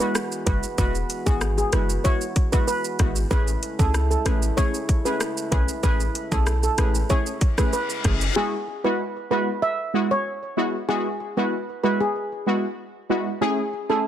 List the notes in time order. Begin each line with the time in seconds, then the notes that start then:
Already playing: E3 G#3 B3 F#4
0.00 G#3 B3 E4 F#4 B4, shaker
0.15 cross-stick, shaker
0.32 shaker
0.46 F#1 G#3 B3 E4 F#4 B4, kick, closed hi-hat, shaker
0.63 shaker
0.78 E1 G#3 B3 E4 F#4 B4, kick, shaker
0.95 shaker
1.10 closed hi-hat, shaker
1.26 G#1 G#3 B3 E4 F#4 G#4, kick, shaker
1.41 cross-stick, shaker
1.58 G#4, shaker
1.73 F#1 G#3 B3 E4 F#4 B4, cross-stick, closed hi-hat, shaker
1.90 shaker
2.04 G#3 B3 E4 F#4 C#5, kick, shaker
2.21 shaker
2.36 kick, closed hi-hat, shaker
2.52 G#3 B3 E4 F#4 B4, kick, shaker
2.68 B4, shaker
2.85 shaker
2.99 G#1 G#3 B3 E4 F#4, kick, cross-stick, closed hi-hat, shaker
3.16 shaker
3.31 A1 C#3 G#3 A3 C#4 E4 G#4 B4, kick, shaker
3.48 shaker
3.63 closed hi-hat, shaker
3.79 C#2 A3 C#4 E4 G#4 A4, kick, shaker
3.94 cross-stick, shaker
4.11 A4, shaker
4.25 A1 A3 C#4 E4 G#4 B4, cross-stick, closed hi-hat, shaker
4.43 shaker
4.57 A3 C#4 E4 G#4 C#5, kick, shaker
4.74 shaker
4.89 kick, closed hi-hat, shaker
5.05 A3 C#4 E4 G#4 B4, shaker
5.21 cross-stick, shaker
5.37 shaker
5.51 B1 A3 C#4 E4 G#4 B4, kick, closed hi-hat, shaker
5.68 shaker
5.83 A1 A3 C#4 E4 G#4 B4, kick, shaker
6.00 shaker
6.15 closed hi-hat, shaker
6.31 B1 A3 C#4 E4 G#4 A4, kick, shaker
6.47 cross-stick, shaker
6.63 A4, shaker
6.78 A1 A3 C#4 E4 G#4 B4, cross-stick, closed hi-hat, shaker
6.95 shaker
7.09 A3 C#4 E4 G#4 C#5, kick, reverse cymbal, shaker
7.26 shaker
7.41 kick, closed hi-hat, shaker
7.58 A3 C#4 E4 G#4 B4, kick, cross-stick, shaker
7.73 B4, shaker
7.90 shaker
8.04 F#1 A3 C#4 E4 G#4, kick, cross-stick, closed hi-hat, shaker
8.21 shaker
8.36 G#3 B3 E4 F#4 G#4
8.84 G#3 B3 E4 F#4 B4
9.30 G#3 B3 E4 F#4 B4
9.62 E5
9.94 G#3 B3 E4 F#4
10.11 C#5
10.57 G#3 B3 E4 F#4
10.88 G#3 B3 E4 F#4 G#4
11.37 G#3 B3 E4 F#4 B4
11.83 G#3 B3 E4 F#4 B4
12.00 G#4
12.46 G#3 B3 E4 F#4
13.09 G#3 B3 E4 F#4
13.41 A3 C#4 E4 G#4
13.89 A3 C#4 E4 G#4 A4